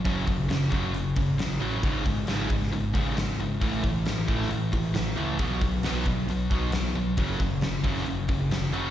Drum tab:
HH |o-o-o-o-o-o-o-o-|o-o-o-o-o-o-o-o-|o-o-o-o-o-o-o-o-|o-o-o-o-o-o-o-o-|
SD |----o-------o---|----o--o----o---|----o--o----o---|----o-------o---|
BD |o-o---o---o-----|o-o---o---o-----|o-o---o---o-----|o-o---o---o-----|

HH |o-o-o-o-o-o-o-o-|
SD |----o--o----o---|
BD |o-o---o---o-----|